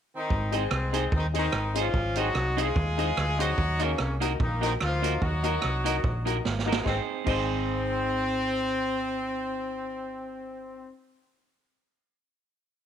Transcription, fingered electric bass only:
0.31 G#1
0.71 C2
1.13 D#2
1.53 G#1
1.94 G#1
2.35 C2
2.76 D#2
3.17 D2
3.58 D#2
4.00 C2
4.40 A#1
4.82 D2
5.22 D#2
5.64 C2
6.04 A#1
6.46 G#1
6.86 G#1
7.27 G#1

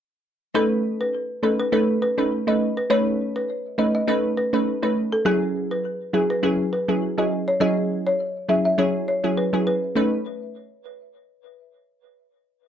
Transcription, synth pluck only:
0.54 A3 C#4 D#4 B4
1.43 A3 C#4 D#4 B4
1.72 A3 C#4 D#4 B4
2.18 A3 C#4 D#4 B4
2.47 A3 C#4 D#4 B4
2.90 A3 C#4 D#4 B4
3.78 A3 C#4 D#4 B4
4.07 A3 C#4 D#4 B4
4.53 A3 C#4 D#4 B4
4.82 A3 C#4 D#4 B4
5.25 F#3 C#4 E4 G#4
6.13 F#3 C#4 E4 G#4
6.43 F#3 C#4 E4 G#4
6.88 F#3 C#4 E4 G#4
7.18 F#3 C#4 E4 G#4
7.60 F#3 C#4 E4 G#4
8.49 F#3 C#4 E4 G#4
8.78 F#3 C#4 E4 G#4
9.24 F#3 C#4 E4 G#4
9.53 F#3 C#4 E4 G#4
9.95 A3 C#4 D#4 B4

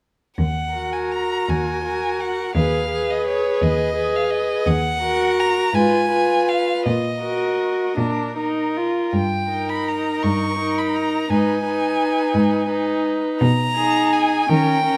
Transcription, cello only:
0.38 D#2
1.48 D#2
2.54 D#2
3.62 D#2
4.66 D#2
5.73 G#2
6.86 A#2
7.97 A#2
9.13 G2
10.24 G2
11.29 G#2
12.34 G#2
13.41 B2
14.49 D#3

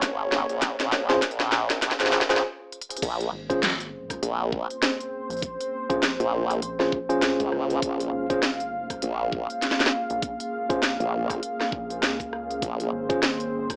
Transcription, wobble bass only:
Already playing: G#1
0.49 A#1
0.80 A#1
1.22 A#1
1.82 A#1
2.00 G#1
3.03 A#1
4.22 A#1
6.20 A#1
7.40 C#2
7.82 A#1
9.03 A#1
11.00 A#1
12.62 A#1

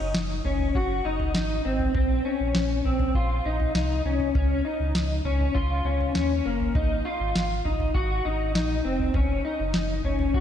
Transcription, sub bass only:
0.00 F#1
0.15 F#1
0.45 F#1
0.75 F#1
1.05 F#1
1.34 G#1
1.65 G#1
1.95 A#1
2.40 A#1
2.55 A#1
2.85 A#1
3.14 A#1
3.45 A#1
3.75 C2
4.05 C2
4.35 C#2
4.80 C#2
4.94 C#2
5.24 C#2
5.55 C#2
5.84 C#2
6.15 D#2
6.45 F#1
6.75 G#1
7.20 G#1
7.35 G#1
7.64 G#1
7.94 G#1
8.25 G#1
8.55 A#1
8.85 F1
9.15 F#1
9.59 F#1
9.75 F#1
10.04 F#1
10.34 F#1

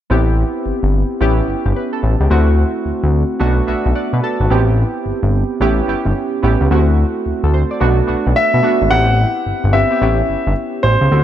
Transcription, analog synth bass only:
0.10 A1
0.66 G1
0.83 G1
1.21 A1
1.48 G1
1.66 G1
2.03 A1
2.20 C#2
2.31 D2
2.86 D2
3.03 D2
3.41 B1
3.68 B1
3.86 B1
4.13 B2
4.40 G#1
4.51 A1
5.06 G1
5.23 G1
5.60 A1
5.88 G1
6.05 G1
6.43 A1
6.61 C#2
6.71 D2
7.26 D2
7.44 D2
7.81 B1
8.09 B1
8.27 B1
8.54 B2
8.82 G#1
8.92 A1
9.46 G1
9.64 G1
10.02 A1
10.29 G1
10.47 G1
10.84 A1
11.01 C#2
11.12 D2

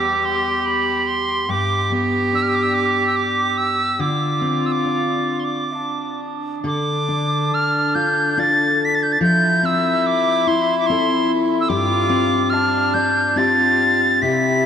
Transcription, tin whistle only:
Already playing: D6
0.25 C6
0.66 B5
1.07 C6
1.50 D6
2.35 E6
2.42 F6
2.49 E6
2.55 D6
2.63 E6
2.74 D6
3.07 E6
3.16 D6
3.58 E6
4.00 D6
4.66 E6
4.72 D6
5.40 C6
5.44 D6
6.67 D6
7.54 F6
7.95 G6
8.39 A6
8.85 B6
8.95 A6
9.03 G6
9.12 A6
9.23 G6
9.65 E6
10.07 D6
10.48 C6
10.79 D6
10.86 C6
11.61 E6
11.69 D6
12.50 F6
12.94 G6
13.37 A6
14.22 B6

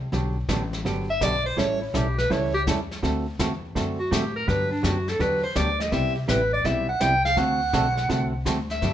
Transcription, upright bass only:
Already playing: C2
0.12 B1
0.49 A1
0.85 G1
1.21 B1
1.57 A1
1.94 B1
2.31 C#2
2.67 E2
3.03 D2
3.39 E2
3.76 F#2
4.12 A2
4.48 G2
4.84 F#2
5.20 E2
5.56 D2
5.92 C2
6.28 A1
6.65 B1
7.00 C2
7.37 D2
7.73 B1
8.09 C2
8.46 D2
8.82 G2

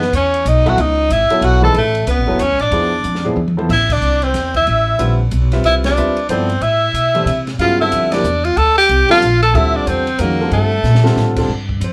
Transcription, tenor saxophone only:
Already playing: B3
0.16 C#4
0.48 D#4
0.69 F#4
0.81 D#4
1.13 E4
1.45 F#4
1.64 A4
1.78 A3
2.10 B3
2.43 C#4
2.62 D4
3.72 E4
3.92 D4
4.24 C4
4.57 E4
5.66 E4
5.86 D4
6.31 C4
6.62 E4
7.61 F4
7.81 E4
8.14 D4
8.45 F4
8.58 A4
8.78 G4
9.11 F4
9.43 A4
9.56 E4
9.76 D4
9.89 C4
10.21 A#3
10.53 A3

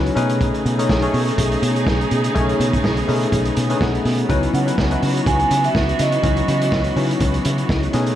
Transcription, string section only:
Already playing: E3 F#3 B3 F#4
0.17 C#3 A3 D#4 G#4
2.12 B3
4.29 E3 F#3 F#4
7.93 C#3 A3 D#4 G#4

